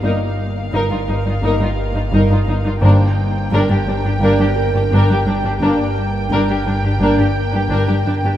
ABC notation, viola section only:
X:1
M:4/4
L:1/16
Q:1/4=86
K:Gm
V:1 name="Viola section"
E z3 E E E E E E z E E E E E | D z3 D D D D D D z D D D D D | D z3 D D D D D D z D D D D D |]